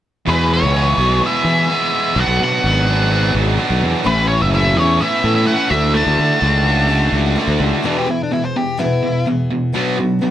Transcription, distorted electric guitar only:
0.26 0.97 E2 medium
0.26 0.98 B2 medium
0.26 0.72 E3 medium
0.26 0.74 G#3 medium
0.26 0.76 B3 medium
0.26 0.75 G#4 medium
0.73 0.99 E3 medium
0.73 0.98 G#3 medium
0.73 0.98 B3 medium
0.73 0.96 G#4 medium
0.97 1.21 E3 soft
0.97 1.21 G#3 medium
0.97 1.23 B3 medium
0.97 1.23 G#4 medium
1.21 1.69 E2 medium
1.21 1.69 B2 medium
1.21 1.47 E3 medium
1.21 1.46 G#3 medium
1.21 1.46 B3 medium
1.21 1.44 G#4 medium
1.45 1.67 E3 soft
1.45 1.68 G#3 soft
1.45 1.69 B3 medium
1.45 1.69 G#4 medium
1.68 2.14 E3 medium
1.68 2.15 G#3 medium
1.68 2.17 B3 medium
1.68 2.16 G#4 medium
2.15 2.87 B2 medium
2.15 2.62 F#3 medium
2.15 2.64 B3 medium
2.15 2.64 D4 medium
2.15 2.65 F#4 medium
2.63 3.10 F#3 medium
2.63 2.89 B3 medium
2.63 2.88 D4 medium
2.63 2.86 F#4 medium
2.87 3.11 B3 soft
2.87 3.12 D4 soft
2.87 3.13 F#4 medium
3.11 3.58 B2 medium
3.11 3.57 F#3 medium
3.11 3.37 B3 medium
3.11 3.36 D4 medium
3.11 3.34 F#4 medium
3.36 3.58 B3 soft
3.36 3.59 D4 medium
3.36 3.59 F#4 medium
3.58 4.04 F#3 medium
3.58 4.05 B3 medium
3.58 4.05 D4 medium
3.58 4.05 F#4 medium
4.04 4.76 A2 medium
4.04 4.51 E3 medium
4.04 4.52 A3 medium
4.04 4.52 C#4 medium
4.04 4.54 E4 medium
4.52 4.99 E3 medium
4.52 4.77 A3 medium
4.52 4.75 C#4 medium
4.52 4.74 E4 medium
4.74 4.99 A3 soft
4.74 5.00 C#4 medium
4.74 5.01 E4 medium
4.99 5.47 A2 medium
4.99 5.45 E3 medium
4.99 5.24 A3 medium
4.99 5.22 C#4 medium
4.99 5.21 E4 medium
5.22 5.45 A3 soft
5.22 5.46 C#4 medium
5.22 5.48 E4 medium
5.45 5.71 E3 medium
5.45 5.69 A3 medium
5.45 5.70 C#4 medium
5.45 5.68 E4 medium
5.69 5.92 D3 medium
5.69 5.93 A3 medium
5.69 5.94 D4 medium
5.69 5.95 F#4 medium
5.93 6.38 D3 medium
5.93 6.40 A3 medium
5.93 6.41 D4 medium
5.93 6.42 F#4 medium
6.39 6.87 D3 medium
6.39 6.67 A3 medium
6.39 6.65 D4 medium
6.39 6.64 F#4 medium
6.65 6.88 A3 soft
6.65 6.89 D4 medium
6.65 6.90 F#4 medium
6.88 7.36 D3 medium
6.88 7.15 A3 medium
6.88 7.14 D4 medium
6.88 7.12 F#4 medium
7.13 7.37 A3 soft
7.13 7.38 D4 medium
7.13 7.38 F#4 medium
7.37 7.83 D3 medium
7.37 7.83 A3 medium
7.37 7.84 D4 medium
7.37 7.84 F#4 medium
7.84 8.07 E2 medium
7.84 8.07 B2 medium
7.84 8.07 E3 medium
8.08 8.30 E2 medium
8.08 8.30 B2 medium
8.31 8.53 E2 medium
8.31 8.53 B2 medium
8.56 8.77 E2 medium
8.56 8.77 B2 medium
8.80 9.01 E2 medium
8.80 9.01 B2 medium
9.03 9.24 E2 medium
9.03 9.25 B2 medium
9.27 9.48 E2 medium
9.27 9.48 B2 medium
9.51 9.72 E2 soft
9.51 9.72 B2 medium
9.74 9.96 B2 medium
9.74 9.97 F#3 medium
9.74 9.97 B3 medium
9.99 10.20 B2 medium
9.99 10.20 F#3 medium
10.22 10.31 B2 medium
10.22 10.31 F#3 medium

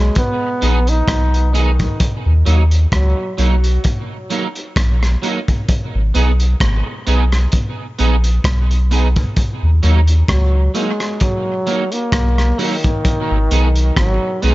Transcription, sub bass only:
0.00 0.10 B1 medium
0.62 1.02 A#1 medium
1.08 1.88 B1 medium
2.26 2.44 D#2 loud
2.47 2.86 D#2 loud
2.92 3.14 C#2 loud
3.39 3.78 B1 medium
4.76 5.16 A#1 medium
5.95 6.12 G#1 medium
6.15 6.55 B1 loud
6.61 6.83 G#1 medium
7.07 7.47 B1 medium
8.00 8.39 A#1 loud
8.45 9.25 B1 loud
9.63 9.80 D#2 medium
9.84 10.23 D#2 loud
10.29 10.69 C#2 medium
12.13 12.53 B1 medium
13.31 13.49 G#1 medium
13.51 13.91 B1 medium
13.97 14.19 G#1 medium
14.43 14.54 B1 loud

